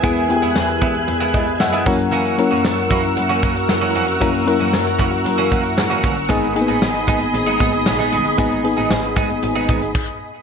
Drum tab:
CC |----------------|----------------|----------------|----------------|
HH |xxxx-xxxxxxx-xox|xxxx-xxxxxxx-xxx|xxxx-xxxxxxx-xxx|xxxx-xxxxxxx-xxx|
TB |----x-------x---|----x-------x---|----x-------x---|----x-------x---|
SD |----o-------o---|----o-------o---|----o-------o---|----o-------o---|
BD |o-----o---o---o-|------o---o-----|o-----o---o---o-|o-----o---o-----|

CC |------------x---|
HH |xxxx-xxxxxxx----|
TB |----x-----------|
SD |----o-----------|
BD |o-----o---o-o---|